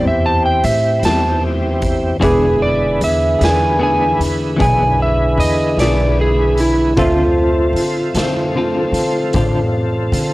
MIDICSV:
0, 0, Header, 1, 7, 480
1, 0, Start_track
1, 0, Tempo, 792602
1, 1342, Time_signature, 12, 3, 24, 8
1, 6259, End_track
2, 0, Start_track
2, 0, Title_t, "Electric slide guitar"
2, 0, Program_c, 0, 29
2, 45, Note_on_c, 0, 76, 62
2, 150, Note_off_c, 0, 76, 0
2, 155, Note_on_c, 0, 81, 72
2, 265, Note_off_c, 0, 81, 0
2, 276, Note_on_c, 0, 79, 67
2, 386, Note_off_c, 0, 79, 0
2, 389, Note_on_c, 0, 76, 75
2, 618, Note_off_c, 0, 76, 0
2, 636, Note_on_c, 0, 81, 79
2, 862, Note_off_c, 0, 81, 0
2, 1359, Note_on_c, 0, 68, 76
2, 1584, Note_off_c, 0, 68, 0
2, 1588, Note_on_c, 0, 74, 76
2, 1818, Note_off_c, 0, 74, 0
2, 1840, Note_on_c, 0, 76, 80
2, 2064, Note_off_c, 0, 76, 0
2, 2086, Note_on_c, 0, 80, 68
2, 2308, Note_off_c, 0, 80, 0
2, 2320, Note_on_c, 0, 80, 76
2, 2545, Note_off_c, 0, 80, 0
2, 2796, Note_on_c, 0, 80, 93
2, 3023, Note_off_c, 0, 80, 0
2, 3042, Note_on_c, 0, 76, 67
2, 3266, Note_off_c, 0, 76, 0
2, 3268, Note_on_c, 0, 75, 86
2, 3499, Note_off_c, 0, 75, 0
2, 3514, Note_on_c, 0, 74, 72
2, 3741, Note_off_c, 0, 74, 0
2, 3761, Note_on_c, 0, 68, 73
2, 3985, Note_off_c, 0, 68, 0
2, 3999, Note_on_c, 0, 64, 70
2, 4224, Note_off_c, 0, 64, 0
2, 4236, Note_on_c, 0, 65, 87
2, 5645, Note_off_c, 0, 65, 0
2, 6259, End_track
3, 0, Start_track
3, 0, Title_t, "Upright piano"
3, 0, Program_c, 1, 0
3, 0, Note_on_c, 1, 67, 53
3, 0, Note_on_c, 1, 71, 47
3, 0, Note_on_c, 1, 72, 49
3, 0, Note_on_c, 1, 79, 62
3, 1317, Note_off_c, 1, 67, 0
3, 1320, Note_off_c, 1, 71, 0
3, 1322, Note_off_c, 1, 72, 0
3, 1323, Note_off_c, 1, 79, 0
3, 1341, Note_on_c, 1, 64, 42
3, 1344, Note_on_c, 1, 68, 43
3, 1350, Note_on_c, 1, 71, 42
3, 1354, Note_on_c, 1, 86, 48
3, 4198, Note_off_c, 1, 64, 0
3, 4200, Note_off_c, 1, 68, 0
3, 4203, Note_off_c, 1, 71, 0
3, 4205, Note_off_c, 1, 86, 0
3, 4219, Note_on_c, 1, 65, 44
3, 4224, Note_on_c, 1, 69, 41
3, 4229, Note_on_c, 1, 72, 42
3, 4235, Note_on_c, 1, 76, 53
3, 6259, Note_off_c, 1, 65, 0
3, 6259, Note_off_c, 1, 69, 0
3, 6259, Note_off_c, 1, 72, 0
3, 6259, Note_off_c, 1, 76, 0
3, 6259, End_track
4, 0, Start_track
4, 0, Title_t, "Tonewheel organ"
4, 0, Program_c, 2, 16
4, 0, Note_on_c, 2, 60, 66
4, 0, Note_on_c, 2, 64, 65
4, 0, Note_on_c, 2, 67, 60
4, 1312, Note_off_c, 2, 67, 0
4, 1313, Note_off_c, 2, 64, 0
4, 1316, Note_off_c, 2, 60, 0
4, 1347, Note_on_c, 2, 71, 59
4, 1349, Note_on_c, 2, 64, 60
4, 1353, Note_on_c, 2, 50, 58
4, 1353, Note_on_c, 2, 68, 55
4, 4201, Note_off_c, 2, 71, 0
4, 4202, Note_off_c, 2, 64, 0
4, 4205, Note_off_c, 2, 50, 0
4, 4205, Note_off_c, 2, 68, 0
4, 4219, Note_on_c, 2, 60, 57
4, 4224, Note_on_c, 2, 65, 62
4, 4225, Note_on_c, 2, 69, 60
4, 6259, Note_off_c, 2, 60, 0
4, 6259, Note_off_c, 2, 65, 0
4, 6259, Note_off_c, 2, 69, 0
4, 6259, End_track
5, 0, Start_track
5, 0, Title_t, "Clean electric guitar"
5, 0, Program_c, 3, 27
5, 603, Note_on_c, 3, 64, 45
5, 614, Note_on_c, 3, 60, 44
5, 626, Note_on_c, 3, 55, 36
5, 756, Note_off_c, 3, 64, 0
5, 762, Note_off_c, 3, 60, 0
5, 768, Note_off_c, 3, 55, 0
5, 1331, Note_on_c, 3, 52, 64
5, 1338, Note_on_c, 3, 62, 76
5, 1338, Note_on_c, 3, 68, 83
5, 1340, Note_on_c, 3, 59, 70
5, 1481, Note_off_c, 3, 52, 0
5, 1484, Note_off_c, 3, 62, 0
5, 1484, Note_off_c, 3, 68, 0
5, 1485, Note_off_c, 3, 59, 0
5, 2053, Note_on_c, 3, 68, 46
5, 2063, Note_on_c, 3, 62, 38
5, 2070, Note_on_c, 3, 59, 41
5, 2202, Note_off_c, 3, 68, 0
5, 2207, Note_off_c, 3, 62, 0
5, 2210, Note_off_c, 3, 59, 0
5, 2296, Note_on_c, 3, 52, 52
5, 2297, Note_on_c, 3, 59, 57
5, 2308, Note_on_c, 3, 68, 54
5, 2311, Note_on_c, 3, 62, 53
5, 2444, Note_off_c, 3, 52, 0
5, 2444, Note_off_c, 3, 59, 0
5, 2450, Note_off_c, 3, 68, 0
5, 2451, Note_off_c, 3, 62, 0
5, 2765, Note_on_c, 3, 52, 69
5, 2774, Note_on_c, 3, 59, 68
5, 2780, Note_on_c, 3, 62, 71
5, 2784, Note_on_c, 3, 68, 80
5, 2918, Note_off_c, 3, 52, 0
5, 2923, Note_off_c, 3, 59, 0
5, 2925, Note_off_c, 3, 62, 0
5, 2927, Note_off_c, 3, 68, 0
5, 3506, Note_on_c, 3, 68, 53
5, 3515, Note_on_c, 3, 62, 50
5, 3526, Note_on_c, 3, 59, 41
5, 3649, Note_off_c, 3, 68, 0
5, 3653, Note_off_c, 3, 62, 0
5, 3659, Note_off_c, 3, 59, 0
5, 4223, Note_on_c, 3, 50, 68
5, 4228, Note_on_c, 3, 65, 73
5, 4229, Note_on_c, 3, 60, 73
5, 4233, Note_on_c, 3, 69, 68
5, 4367, Note_off_c, 3, 50, 0
5, 4370, Note_off_c, 3, 60, 0
5, 4370, Note_off_c, 3, 65, 0
5, 4372, Note_off_c, 3, 69, 0
5, 4938, Note_on_c, 3, 69, 59
5, 4945, Note_on_c, 3, 65, 52
5, 4954, Note_on_c, 3, 60, 47
5, 5084, Note_off_c, 3, 69, 0
5, 5088, Note_off_c, 3, 65, 0
5, 5092, Note_off_c, 3, 60, 0
5, 5181, Note_on_c, 3, 50, 55
5, 5188, Note_on_c, 3, 60, 69
5, 5192, Note_on_c, 3, 65, 71
5, 5196, Note_on_c, 3, 69, 69
5, 5326, Note_off_c, 3, 50, 0
5, 5329, Note_off_c, 3, 60, 0
5, 5331, Note_off_c, 3, 65, 0
5, 5333, Note_off_c, 3, 69, 0
5, 5658, Note_on_c, 3, 50, 78
5, 5666, Note_on_c, 3, 60, 75
5, 5669, Note_on_c, 3, 65, 83
5, 5669, Note_on_c, 3, 69, 87
5, 5804, Note_off_c, 3, 50, 0
5, 5808, Note_off_c, 3, 60, 0
5, 5810, Note_off_c, 3, 65, 0
5, 5810, Note_off_c, 3, 69, 0
5, 6259, End_track
6, 0, Start_track
6, 0, Title_t, "Upright bass"
6, 0, Program_c, 4, 32
6, 0, Note_on_c, 4, 40, 79
6, 357, Note_off_c, 4, 40, 0
6, 385, Note_on_c, 4, 45, 81
6, 604, Note_off_c, 4, 45, 0
6, 621, Note_on_c, 4, 40, 70
6, 1317, Note_off_c, 4, 40, 0
6, 1343, Note_on_c, 4, 28, 88
6, 1799, Note_off_c, 4, 28, 0
6, 1823, Note_on_c, 4, 40, 75
6, 2044, Note_off_c, 4, 40, 0
6, 2064, Note_on_c, 4, 40, 84
6, 2519, Note_off_c, 4, 40, 0
6, 2538, Note_on_c, 4, 40, 72
6, 2761, Note_off_c, 4, 40, 0
6, 2782, Note_on_c, 4, 35, 86
6, 3239, Note_off_c, 4, 35, 0
6, 3255, Note_on_c, 4, 40, 85
6, 3480, Note_off_c, 4, 40, 0
6, 3492, Note_on_c, 4, 35, 78
6, 4194, Note_off_c, 4, 35, 0
6, 4219, Note_on_c, 4, 38, 82
6, 4677, Note_off_c, 4, 38, 0
6, 4680, Note_on_c, 4, 50, 73
6, 4912, Note_off_c, 4, 50, 0
6, 4931, Note_on_c, 4, 50, 76
6, 5393, Note_off_c, 4, 50, 0
6, 5402, Note_on_c, 4, 50, 69
6, 5632, Note_off_c, 4, 50, 0
6, 5657, Note_on_c, 4, 33, 75
6, 6115, Note_off_c, 4, 33, 0
6, 6129, Note_on_c, 4, 50, 91
6, 6259, Note_off_c, 4, 50, 0
6, 6259, End_track
7, 0, Start_track
7, 0, Title_t, "Drums"
7, 385, Note_on_c, 9, 42, 54
7, 446, Note_off_c, 9, 42, 0
7, 624, Note_on_c, 9, 42, 70
7, 639, Note_on_c, 9, 38, 86
7, 684, Note_off_c, 9, 42, 0
7, 700, Note_off_c, 9, 38, 0
7, 1100, Note_on_c, 9, 42, 54
7, 1104, Note_on_c, 9, 36, 69
7, 1161, Note_off_c, 9, 42, 0
7, 1165, Note_off_c, 9, 36, 0
7, 1346, Note_on_c, 9, 42, 75
7, 1347, Note_on_c, 9, 36, 95
7, 1406, Note_off_c, 9, 42, 0
7, 1407, Note_off_c, 9, 36, 0
7, 1823, Note_on_c, 9, 42, 55
7, 1883, Note_off_c, 9, 42, 0
7, 2066, Note_on_c, 9, 42, 71
7, 2082, Note_on_c, 9, 38, 88
7, 2126, Note_off_c, 9, 42, 0
7, 2142, Note_off_c, 9, 38, 0
7, 2549, Note_on_c, 9, 42, 57
7, 2609, Note_off_c, 9, 42, 0
7, 2787, Note_on_c, 9, 36, 94
7, 2790, Note_on_c, 9, 42, 71
7, 2848, Note_off_c, 9, 36, 0
7, 2851, Note_off_c, 9, 42, 0
7, 3272, Note_on_c, 9, 42, 53
7, 3332, Note_off_c, 9, 42, 0
7, 3508, Note_on_c, 9, 42, 70
7, 3523, Note_on_c, 9, 38, 106
7, 3568, Note_off_c, 9, 42, 0
7, 3584, Note_off_c, 9, 38, 0
7, 3981, Note_on_c, 9, 42, 51
7, 4042, Note_off_c, 9, 42, 0
7, 4221, Note_on_c, 9, 42, 68
7, 4223, Note_on_c, 9, 36, 106
7, 4282, Note_off_c, 9, 42, 0
7, 4284, Note_off_c, 9, 36, 0
7, 4701, Note_on_c, 9, 42, 52
7, 4761, Note_off_c, 9, 42, 0
7, 4933, Note_on_c, 9, 42, 78
7, 4949, Note_on_c, 9, 38, 99
7, 4994, Note_off_c, 9, 42, 0
7, 5010, Note_off_c, 9, 38, 0
7, 5413, Note_on_c, 9, 42, 58
7, 5474, Note_off_c, 9, 42, 0
7, 5650, Note_on_c, 9, 42, 74
7, 5657, Note_on_c, 9, 36, 92
7, 5711, Note_off_c, 9, 42, 0
7, 5717, Note_off_c, 9, 36, 0
7, 6137, Note_on_c, 9, 42, 64
7, 6198, Note_off_c, 9, 42, 0
7, 6259, End_track
0, 0, End_of_file